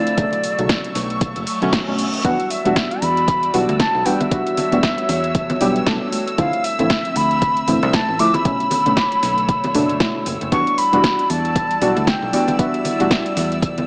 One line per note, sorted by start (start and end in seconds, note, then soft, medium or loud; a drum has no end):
0.00 0.15 D3 medium
0.00 0.15 F3 medium
0.00 0.15 A3 medium
0.00 0.16 A3 medium
0.00 0.15 C4 medium
0.00 0.16 C4 medium
0.00 0.15 E4 medium
0.00 0.95 D5 medium
0.00 0.16 F5 medium
0.00 2.23 E6 medium
0.07 closed hi-hat medium
0.17 0.55 B2 medium
0.17 0.55 C#3 loud
0.17 0.55 D3 medium
0.17 0.55 F#3 medium
0.17 2.23 F#3 medium
0.17 2.23 A3 medium
0.17 0.55 A3 medium
0.17 2.22 C#6 medium
0.17 kick loud
0.17 closed hi-hat medium
0.33 closed hi-hat soft
0.44 open hi-hat loud
0.58 0.66 B1 medium
0.58 1.44 B2 medium
0.58 1.45 C#3 medium
0.58 1.45 D3 medium
0.58 1.45 F#3 medium
0.58 1.45 A3 medium
0.58 closed hi-hat medium
0.69 kick loud
0.69 snare loud
0.69 closed hi-hat medium
0.84 closed hi-hat soft
0.95 1.35 B1 medium
0.95 snare soft
0.95 open hi-hat loud
1.10 closed hi-hat soft
1.21 kick loud
1.21 closed hi-hat medium
1.21 reverse cymbal medium
1.36 1.44 F#1 medium
1.36 closed hi-hat soft
1.47 open hi-hat loud
1.61 1.84 B2 loud
1.61 1.84 D3 medium
1.61 1.84 F#3 medium
1.61 1.84 A3 medium
1.61 1.84 C#4 loud
1.61 closed hi-hat soft
1.73 kick loud
1.73 snare loud
1.73 closed hi-hat medium
1.87 2.22 B2 medium
1.87 2.22 D3 medium
1.87 2.22 F#3 medium
1.87 2.22 A3 medium
1.87 2.22 C#4 medium
1.99 open hi-hat loud
2.14 closed hi-hat medium
2.24 2.35 E2 loud
2.24 2.36 E3 loud
2.24 2.36 G3 medium
2.24 6.34 G3 medium
2.24 2.36 B3 medium
2.24 2.36 D4 medium
2.24 6.34 F#4 medium
2.24 2.36 F#4 loud
2.24 4.29 D5 medium
2.24 2.52 F#5 medium
2.24 10.51 E6 medium
2.24 kick loud
2.24 closed hi-hat medium
2.40 closed hi-hat soft
2.50 3.04 E5 loud
2.50 open hi-hat loud
2.64 2.73 E1 medium
2.64 3.51 E3 medium
2.64 3.51 G3 medium
2.64 3.51 B3 medium
2.64 3.51 D4 medium
2.64 3.52 F#4 medium
2.64 closed hi-hat medium
2.64 high conga medium
2.76 kick loud
2.76 snare loud
2.76 closed hi-hat medium
2.91 closed hi-hat soft
3.02 3.49 E2 medium
3.02 3.54 B5 loud
3.02 open hi-hat loud
3.17 closed hi-hat soft
3.28 kick loud
3.28 closed hi-hat medium
3.43 closed hi-hat soft
3.53 3.65 B1 medium
3.53 3.65 E3 medium
3.53 3.65 G3 medium
3.53 3.65 B3 medium
3.53 3.65 D4 medium
3.53 3.65 F#4 loud
3.53 open hi-hat loud
3.69 3.87 D2 loud
3.69 closed hi-hat soft
3.80 4.07 A5 loud
3.80 kick loud
3.80 snare loud
3.80 closed hi-hat medium
3.80 high conga medium
3.95 4.03 B1 loud
4.05 4.29 E3 medium
4.05 4.29 G3 medium
4.05 4.29 B3 medium
4.05 4.29 D4 medium
4.05 4.29 F#4 medium
4.05 4.22 G5 loud
4.05 open hi-hat loud
4.05 high conga medium
4.20 6.12 E5 loud
4.20 closed hi-hat medium
4.20 low conga medium
4.31 4.68 E3 medium
4.31 4.68 G3 medium
4.31 4.69 B3 medium
4.31 4.69 D4 medium
4.31 4.69 F#4 loud
4.31 6.36 C#5 medium
4.31 kick loud
4.31 closed hi-hat medium
4.47 closed hi-hat soft
4.57 open hi-hat loud
4.57 low conga medium
4.71 4.80 E1 medium
4.71 5.58 E3 medium
4.71 5.58 G3 medium
4.71 5.59 B3 medium
4.71 5.59 D4 medium
4.71 5.59 F#4 medium
4.71 closed hi-hat medium
4.71 high conga medium
4.83 kick loud
4.83 snare loud
4.83 closed hi-hat medium
4.98 closed hi-hat soft
5.09 5.56 E2 medium
5.09 snare soft
5.09 open hi-hat loud
5.24 closed hi-hat soft
5.35 kick loud
5.35 closed hi-hat medium
5.50 closed hi-hat soft
5.50 low conga loud
5.60 5.81 B1 medium
5.60 5.84 E3 loud
5.60 5.84 G3 medium
5.60 5.84 B3 medium
5.60 5.84 D4 medium
5.60 5.84 G4 loud
5.60 open hi-hat loud
5.76 closed hi-hat soft
5.86 5.97 B1 medium
5.86 6.35 E3 medium
5.86 6.36 G3 medium
5.86 6.36 B3 medium
5.86 6.36 D4 medium
5.86 6.36 A4 medium
5.86 kick loud
5.86 snare loud
5.86 closed hi-hat medium
5.86 high conga loud
6.12 open hi-hat loud
6.12 high conga medium
6.27 closed hi-hat medium
6.38 6.49 D2 loud
6.38 6.50 D3 loud
6.38 6.50 F3 medium
6.38 8.43 F3 medium
6.38 6.50 A3 medium
6.38 8.43 C4 medium
6.38 6.50 C4 medium
6.38 6.50 E4 loud
6.38 8.43 E5 medium
6.38 6.66 F5 medium
6.38 kick loud
6.38 closed hi-hat medium
6.53 closed hi-hat soft
6.64 7.18 E5 loud
6.64 open hi-hat loud
6.78 6.87 A1 medium
6.78 7.65 D3 medium
6.78 7.65 F3 medium
6.78 7.65 A3 medium
6.78 7.65 C4 medium
6.78 7.65 E4 medium
6.78 closed hi-hat medium
6.78 high conga medium
6.90 kick loud
6.90 snare loud
6.90 closed hi-hat medium
7.05 closed hi-hat soft
7.16 7.63 D2 medium
7.16 7.68 B5 loud
7.16 open hi-hat loud
7.31 closed hi-hat soft
7.42 kick loud
7.42 closed hi-hat medium
7.57 closed hi-hat soft
7.67 7.79 A1 medium
7.67 7.79 D3 medium
7.67 7.79 F3 medium
7.67 7.79 A3 medium
7.67 7.79 C4 medium
7.67 7.79 E4 loud
7.67 open hi-hat loud
7.83 8.00 C2 loud
7.83 closed hi-hat soft
7.93 8.21 A5 loud
7.93 kick loud
7.93 snare loud
7.93 closed hi-hat medium
7.93 high conga loud
8.09 8.16 A1 loud
8.19 8.42 D3 medium
8.19 8.42 F3 medium
8.19 8.43 A3 medium
8.19 8.43 C4 medium
8.19 8.43 E4 medium
8.19 8.36 D6 loud
8.19 open hi-hat loud
8.19 high conga medium
8.34 10.26 B5 loud
8.34 closed hi-hat medium
8.34 low conga medium
8.45 8.82 B2 medium
8.45 8.82 D3 medium
8.45 10.50 D3 medium
8.45 8.82 F#3 medium
8.45 10.50 A3 medium
8.45 8.83 A3 medium
8.45 8.83 C#4 loud
8.45 10.50 C#5 medium
8.45 kick loud
8.45 closed hi-hat medium
8.60 closed hi-hat soft
8.71 open hi-hat loud
8.71 low conga medium
8.85 8.94 B1 medium
8.85 9.72 B2 medium
8.85 9.72 D3 medium
8.85 9.72 F#3 medium
8.85 9.72 A3 medium
8.85 9.73 C#4 medium
8.85 closed hi-hat medium
8.85 high conga medium
8.97 kick loud
8.97 snare loud
8.97 closed hi-hat medium
9.12 closed hi-hat soft
9.23 9.70 B1 medium
9.23 snare soft
9.23 open hi-hat loud
9.38 closed hi-hat soft
9.49 kick loud
9.49 closed hi-hat medium
9.64 closed hi-hat soft
9.64 low conga medium
9.74 9.94 F#1 medium
9.74 9.98 B2 loud
9.74 9.98 D3 medium
9.74 9.98 F#3 medium
9.74 9.98 A3 medium
9.74 9.98 D4 loud
9.74 open hi-hat loud
9.89 closed hi-hat soft
10.00 10.49 B2 medium
10.00 10.49 D3 medium
10.00 10.49 F#3 medium
10.00 10.50 A3 medium
10.00 10.50 E4 medium
10.00 kick loud
10.00 snare loud
10.00 closed hi-hat medium
10.00 high conga loud
10.26 10.37 F#1 medium
10.26 open hi-hat loud
10.26 high conga medium
10.41 10.49 F#1 medium
10.41 closed hi-hat medium
10.52 10.63 E2 loud
10.52 10.63 E3 loud
10.52 10.64 G3 medium
10.52 13.87 G3 medium
10.52 10.64 B3 medium
10.52 10.64 D4 medium
10.52 13.87 E4 medium
10.52 10.64 F#4 loud
10.52 13.87 D5 medium
10.52 10.80 C#6 loud
10.52 13.87 E6 medium
10.52 kick loud
10.52 closed hi-hat medium
10.67 closed hi-hat soft
10.78 11.31 B5 loud
10.78 open hi-hat loud
10.92 11.01 E1 medium
10.92 11.78 E3 medium
10.92 11.79 G3 medium
10.92 11.79 B3 medium
10.92 11.79 D4 medium
10.92 11.79 F#4 medium
10.92 closed hi-hat medium
10.92 high conga medium
11.04 kick loud
11.04 snare loud
11.04 closed hi-hat medium
11.19 closed hi-hat soft
11.30 11.77 E2 medium
11.30 12.09 A5 loud
11.30 open hi-hat loud
11.45 closed hi-hat soft
11.55 kick loud
11.55 closed hi-hat medium
11.71 closed hi-hat soft
11.81 11.92 B1 medium
11.81 11.93 E3 medium
11.81 11.93 G3 medium
11.81 11.93 B3 medium
11.81 11.93 D4 medium
11.81 11.93 F#4 loud
11.81 open hi-hat loud
11.96 12.14 D2 loud
11.96 closed hi-hat soft
12.07 12.58 G5 loud
12.07 kick loud
12.07 snare loud
12.07 closed hi-hat medium
12.07 high conga medium
12.22 12.30 B1 loud
12.33 12.56 E3 medium
12.33 12.56 G3 medium
12.33 12.56 B3 medium
12.33 12.56 D4 medium
12.33 12.57 F#4 medium
12.33 open hi-hat loud
12.33 high conga medium
12.48 closed hi-hat medium
12.48 low conga medium
12.59 12.96 E3 medium
12.59 12.96 G3 medium
12.59 12.96 B3 medium
12.59 12.96 D4 medium
12.59 12.96 F#4 loud
12.59 13.58 E5 medium
12.59 kick loud
12.59 closed hi-hat medium
12.74 closed hi-hat soft
12.85 open hi-hat loud
12.85 low conga medium
12.99 13.08 E1 medium
12.99 13.86 E3 medium
12.99 13.86 G3 medium
12.99 13.86 B3 medium
12.99 13.86 D4 medium
12.99 13.87 F#4 medium
12.99 closed hi-hat medium
12.99 high conga medium
13.11 kick loud
13.11 snare loud
13.11 closed hi-hat medium
13.26 closed hi-hat soft
13.37 13.84 E2 medium
13.37 snare soft
13.37 open hi-hat loud
13.52 closed hi-hat soft
13.62 kick loud
13.62 closed hi-hat medium
13.78 closed hi-hat soft
13.78 low conga medium